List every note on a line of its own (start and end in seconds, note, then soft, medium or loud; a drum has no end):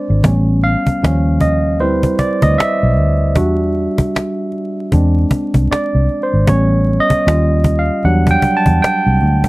0.00 0.20 G#3 medium
0.00 0.20 C4 medium
0.00 0.21 D4 medium
0.00 0.26 C5 medium
0.00 0.33 D5 medium
0.10 0.22 G#1 medium
0.24 0.75 A1 loud
0.24 0.98 G3 medium
0.24 0.98 B3 soft
0.24 0.99 C#4 medium
0.24 cajon bass loud
0.63 1.44 F5 loud
0.63 cajon slap soft
0.86 muted fingered electric bass stroke soft
0.86 cajon bass medium
1.03 1.81 D#2 loud
1.03 1.76 F3 medium
1.03 1.77 G3 soft
1.03 1.77 C#4 medium
1.03 cajon slap loud
1.40 1.81 D#5 medium
1.40 cajon bass medium
1.79 2.12 D2 loud
1.79 3.32 G3 medium
1.79 3.32 C4 soft
1.79 3.32 E4 medium
1.79 3.32 B4 medium
1.79 2.20 C5 medium
1.79 cajon slap soft
2.03 cajon bass medium
2.03 cajon slap soft
2.19 2.43 D5 medium
2.19 cajon bass medium
2.42 2.55 D2 medium
2.42 2.58 D#5 loud
2.42 cajon bass medium
2.58 4.49 E5 loud
2.58 cajon slap loud
2.83 2.98 B1 medium
2.97 3.36 D2 loud
2.97 cajon slap soft
3.36 3.86 E2 loud
3.36 3.91 G3 medium
3.36 3.91 D4 medium
3.36 3.91 F#4 medium
3.36 cajon bass loud
3.75 cajon slap soft
3.98 muted fingered electric bass stroke soft
3.98 cajon bass medium
4.16 cajon slap loud
4.52 cajon slap soft
4.92 5.24 E2 loud
4.92 6.05 G#3 medium
4.92 6.05 C4 medium
4.92 6.05 D4 medium
4.92 cajon bass medium
5.18 cajon slap soft
5.31 cajon bass medium
5.54 5.67 C2 medium
5.54 cajon bass medium
5.71 6.19 D5 medium
5.71 cajon slap loud
5.95 6.06 C2 medium
6.09 cajon slap soft
6.23 6.49 C5 medium
6.34 6.45 G#1 medium
6.47 6.98 A1 loud
6.47 7.22 G3 medium
6.47 7.22 B3 soft
6.47 7.22 C#4 medium
6.47 7.02 C#5 medium
6.47 cajon bass loud
6.87 cajon slap soft
7.00 7.80 D#5 loud
7.10 muted fingered electric bass stroke soft
7.10 cajon bass medium
7.10 cajon slap soft
7.26 7.89 D#2 loud
7.26 8.00 G3 medium
7.26 8.00 C#4 soft
7.26 8.00 F4 medium
7.26 cajon slap loud
7.64 cajon bass medium
7.64 cajon slap soft
7.79 8.02 F5 medium
8.03 8.35 E2 medium
8.03 9.17 F#3 medium
8.03 9.17 G3 medium
8.03 9.17 D4 medium
8.03 8.31 F#5 medium
8.03 cajon slap soft
8.27 8.42 G5 loud
8.27 cajon bass medium
8.27 cajon slap soft
8.42 cajon bass medium
8.57 8.83 A5 loud
8.66 8.79 E2 medium
8.66 cajon bass medium
8.82 9.49 G5 loud
8.82 cajon slap loud
9.06 9.18 C2 medium
9.21 9.49 D2 loud
9.21 cajon slap soft
9.44 cajon bass medium